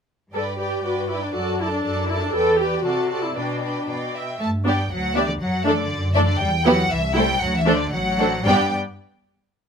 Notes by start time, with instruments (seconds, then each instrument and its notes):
0.32 cello section G2, viola section A4, violin section B4 D5 G5
0.58 viola section G4, violin section B4 D5 G5
0.83 cello section G2, viola section F#4, violin section B4 D5 G5
1.10 viola section E4, violin section B4 D5 G5
1.23 viola section D4
1.34 cello section F#2, viola section F#4, violin section A4 D5 A5
1.60 viola section E4, violin section A4 D5 A5
1.72 viola section D4
1.84 cello section F#2, violin section A4 D5 A5
2.09 viola section E4, violin section A4 D5 A5
2.22 viola section D4
2.33 cello section E2, viola section A4, violin section B4 D5 G5
2.58 viola section G4, violin section B4 D5 G5
2.83 cello section C3, viola section F#4, violin section A4 D5 A5
3.10 violin section A4 D5 A5
3.22 viola section E4
3.34 cello section B2, viola section D4, violin section B4 D5 G5
3.62 violin section B4 D5 G5
3.87 cello section B2, violin section D5 G5
4.15 violin section E5 G5
4.39 double bass section G2, cello section A3, violin section A5
4.64 cello section G3, viola section B3 D4, violin section G4 D5 G5
4.91 double bass section D2, cello section F#3, violin section F#5
5.15 cello section E3, viola section B3 D4, violin section G4 D5 E5
5.27 cello section D3, violin section D5
5.40 double bass section F#2, cello section F#3, violin section F#5
5.64 cello section E3, viola section A3 D4, violin section A4 D5 E5
5.77 cello section D3, violin section D5
5.90 double bass section F#2
6.13 cello section E3, viola section A3 D4, violin section A4 D5 E5
6.25 cello section D3, violin section D5
6.39 double bass section E2, cello section G3, violin section G5
6.64 cello section F#3, viola section B3 E4, violin section G4 B4 F#5
6.89 double bass section C2, cello section E3, violin section E5
7.14 cello section G3, viola section A3 E4, violin section A4 C5 G5
7.40 double bass section D2, cello section F#3, violin section F#5
7.57 cello section E3, violin section E5
7.65 viola section A3 D4, violin section A4 C5
7.74 cello section D3, violin section D5
7.91 double bass section A1, cello section F#3, violin section F#5
8.18 viola section A3 D4, violin section A4 C5
8.45 double bass section G2, cello section G3, viola section B3 D4, violin section G4 D5 G5